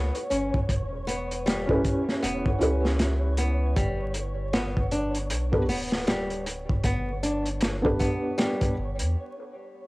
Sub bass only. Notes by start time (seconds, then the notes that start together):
Already playing: C#2
0.31 G1
0.69 E1
2.23 E1
2.61 C#2
3.77 G1
5.30 B1
5.69 D1
6.84 G1
8.78 G1
9.01 E2